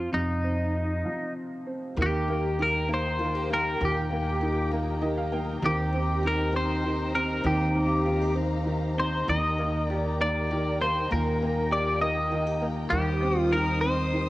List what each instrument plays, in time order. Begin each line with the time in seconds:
Already playing: upright piano F3 C4
0.12 upright bass F2, upright piano C3, clean electric guitar D#4
0.44 upright piano C4
1.05 upright piano F3
1.66 upright piano C4
1.96 upright bass D#2, upright piano D#3, steel-string acoustic guitar A#3 G4, string section D#4 A#4 G5 A#5
2.02 clean electric guitar G4
2.28 upright piano A#3, steel-string acoustic guitar D#4
2.59 upright piano D#4, steel-string acoustic guitar G4, clean electric guitar A#4
2.88 upright piano A#3, steel-string acoustic guitar D#4
2.94 clean electric guitar C5
3.19 upright piano D#3, steel-string acoustic guitar F4
3.35 steel-string acoustic guitar G4
3.50 upright piano A#3, steel-string acoustic guitar D#4, clean electric guitar A#4
3.81 upright bass D#2, upright piano A#2, steel-string acoustic guitar A#3 G4
3.85 clean electric guitar G4
4.11 upright piano A#3, steel-string acoustic guitar D#4
4.41 upright piano D#4, steel-string acoustic guitar G4
4.71 upright piano A#3, steel-string acoustic guitar D#4
5.02 upright piano D#3 D#5, steel-string acoustic guitar G4
5.18 upright piano F5
5.32 upright piano A#3 G5, steel-string acoustic guitar D#4
5.62 upright bass D#2, upright piano D#3, steel-string acoustic guitar C4 G4, clean electric guitar G4, string section C5 G5
5.92 upright piano C4, steel-string acoustic guitar D#4
6.23 upright piano D#4, steel-string acoustic guitar G4
6.27 clean electric guitar A#4
6.53 upright piano C4, steel-string acoustic guitar D#4, clean electric guitar C5
6.83 upright piano D#3, steel-string acoustic guitar G4
7.13 upright piano C4, steel-string acoustic guitar D#4, clean electric guitar A#4
7.44 upright bass D#2, upright piano D#3, steel-string acoustic guitar C4 G4, clean electric guitar G4, string section F5
7.75 upright piano C4, steel-string acoustic guitar D#4
8.06 upright piano D#4, steel-string acoustic guitar F4
8.21 steel-string acoustic guitar G4
8.35 upright piano C4, steel-string acoustic guitar D#4
8.66 upright piano D#3, steel-string acoustic guitar G4
8.97 upright piano C4, steel-string acoustic guitar D#4, clean electric guitar C5
9.27 upright bass D#2, upright piano D#3, steel-string acoustic guitar A#3 G4, string section A#4 G5, clean electric guitar D#5
9.58 upright piano A#3, steel-string acoustic guitar D#4
9.89 steel-string acoustic guitar G4, upright piano G4, clean electric guitar D5
10.20 upright piano A#3, steel-string acoustic guitar D#4, clean electric guitar D5
10.51 upright piano D#3, steel-string acoustic guitar G4
10.80 upright piano A#3, steel-string acoustic guitar D#4, clean electric guitar C5
11.11 upright bass D#2, upright piano A#2, steel-string acoustic guitar A#3 G4, clean electric guitar A#4
11.42 upright piano A#3, steel-string acoustic guitar D#4
11.72 steel-string acoustic guitar G4, upright piano G4, clean electric guitar D5
12.01 upright piano A#3, steel-string acoustic guitar D#4, clean electric guitar D#5
12.31 upright piano D#3, steel-string acoustic guitar F4
12.47 steel-string acoustic guitar G4
12.62 upright piano A#3, steel-string acoustic guitar D#4
12.90 upright bass D#2, upright piano D#3, steel-string acoustic guitar G3 G4, string section D#4 C5 D#6, clean electric guitar G4
13.22 upright piano C4, steel-string acoustic guitar D#4
13.39 clean electric guitar F4
13.52 upright piano D#4, steel-string acoustic guitar G4, clean electric guitar A#4
13.81 upright piano C4, steel-string acoustic guitar D#4, clean electric guitar C5
14.13 upright piano D#3, steel-string acoustic guitar G4